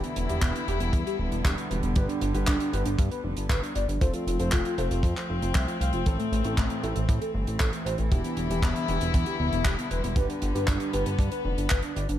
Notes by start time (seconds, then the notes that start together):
Already playing: D3 E3 G3 B3 D4 E4 G4
0.04 B3, closed hi-hat
0.16 E1 B3, closed hi-hat
0.29 E1 E3 B3 D4 E4 G4, closed hi-hat
0.42 E1 B3, kick, clap, closed hi-hat
0.55 B3, closed hi-hat
0.68 E1 E3 B3 D4 E4 G4, closed hi-hat
0.80 E1 B3, closed hi-hat
0.93 E2 B3, kick, closed hi-hat
1.07 G4, closed hi-hat
1.19 D1 B3
1.32 E1 B3, closed hi-hat
1.45 E1 G4, kick, clap, closed hi-hat
1.57 B3, closed hi-hat
1.70 E1 B4, closed hi-hat
1.83 E1 B3, closed hi-hat
1.96 G1 G2 G3 B3 D4 G4 B4, kick, closed hi-hat
2.09 D4, closed hi-hat
2.21 G1 D4, closed hi-hat
2.34 G1 G2 G3 B3 D4 G4 B4, closed hi-hat
2.47 G1 D4, kick, clap, closed hi-hat
2.60 D4, closed hi-hat
2.73 G1 G2 G3 B3 D4 G4 B4, closed hi-hat
2.86 G1 D4, closed hi-hat
2.99 G2 D4, kick, closed hi-hat
3.11 B4, closed hi-hat
3.24 F1 D4
3.37 G1 D4, closed hi-hat
3.50 G1 B4, kick, clap, closed hi-hat
3.63 D4, closed hi-hat
3.75 G1 D5, closed hi-hat
3.88 G1 D4, closed hi-hat
4.01 F1 F3 A3 C4 F4 A4 C5, kick, closed hi-hat
4.13 F4, closed hi-hat
4.27 F1 F4, closed hi-hat
4.39 F1 A3 C4 F4 A4 C5, closed hi-hat
4.52 F1 F4, kick, clap, closed hi-hat
4.65 F4, closed hi-hat
4.78 F1 A3 C4 F4 A4 C5, closed hi-hat
4.91 F1 F4, closed hi-hat
5.03 F2 F4, kick, closed hi-hat
5.16 C5, clap, closed hi-hat
5.29 F1 F4
5.42 F1 F4, closed hi-hat
5.55 C2 E5, kick, clap, closed hi-hat
5.68 F4, closed hi-hat
5.81 C2 F5, closed hi-hat
5.93 F1 F4, closed hi-hat
6.06 A1 A2 E3 A3 C4 E4 A4, kick, closed hi-hat
6.19 A3, closed hi-hat
6.32 A1 A3, closed hi-hat
6.44 A1 A2 A3 C4 E4 A4, closed hi-hat
6.57 A1 A3, kick, clap, closed hi-hat
6.70 A3, closed hi-hat
6.83 A1 A2 A3 C4 E4 A4, closed hi-hat
6.96 A1 A3, closed hi-hat
7.09 A2 A3, kick, closed hi-hat
7.21 A4, closed hi-hat
7.34 G1 A3
7.47 A1 A3, closed hi-hat
7.60 A1 A4, kick, clap, closed hi-hat
7.73 A3, closed hi-hat
7.86 A1 C5, closed hi-hat
7.98 A1 A3, closed hi-hat
8.11 E1 D3 E3 G3 B3 D4 E4 G4, kick, closed hi-hat
8.24 B3, closed hi-hat
8.37 E1 B3, closed hi-hat
8.50 E1 E3 B3 D4 E4 G4, closed hi-hat
8.62 E1 B3, kick, clap, closed hi-hat
8.76 B3, closed hi-hat
8.88 E1 E3 B3 D4 E4 G4, closed hi-hat
9.01 E1 B3, closed hi-hat
9.14 E2 B3, kick, closed hi-hat
9.26 G4, closed hi-hat
9.40 D1 B3
9.52 E1 B3, closed hi-hat
9.65 E1 G4, kick, clap, closed hi-hat
9.78 B3, closed hi-hat
9.91 E1 B4, closed hi-hat
10.04 E1 B3, closed hi-hat
10.16 G1 G2 G3 B3 D4 G4 B4, kick, closed hi-hat
10.29 D4, closed hi-hat
10.42 G1 D4, closed hi-hat
10.55 G1 G2 G3 B3 D4 G4 B4, closed hi-hat
10.67 G1 D4, kick, clap, closed hi-hat
10.80 D4, closed hi-hat
10.93 G1 G2 G3 B3 D4 G4 B4, closed hi-hat
11.06 G1 D4, closed hi-hat
11.19 G2 D4, kick, closed hi-hat
11.32 B4, closed hi-hat
11.45 F1 D4
11.58 G1 D4, closed hi-hat
11.70 G1 B4, kick, clap, closed hi-hat
11.82 D4, closed hi-hat
11.96 G1 D5, closed hi-hat
12.09 G1 D4, closed hi-hat